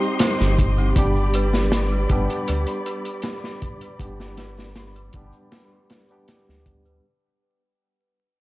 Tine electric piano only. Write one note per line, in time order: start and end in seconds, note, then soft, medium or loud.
0.00 0.92 G3 medium
0.00 0.92 C4 medium
0.00 0.92 D#4 medium
0.00 0.93 G4 medium
0.96 2.06 G3 medium
0.96 2.06 B3 medium
0.96 2.07 D4 medium
0.96 2.07 G4 medium
2.10 3.96 G3 medium
2.10 3.96 B3 medium
2.10 3.96 D4 medium
2.10 3.97 G4 medium
3.99 5.09 G3 medium
3.99 5.10 B3 medium
3.99 5.10 D4 medium
3.99 5.10 G4 medium
5.15 6.06 G3 medium
5.15 6.06 B3 medium
5.15 6.07 D4 medium
5.15 6.07 G4 medium
6.10 7.00 G3 medium
6.10 7.00 B3 medium
6.10 7.00 D4 medium
6.10 7.01 G4 medium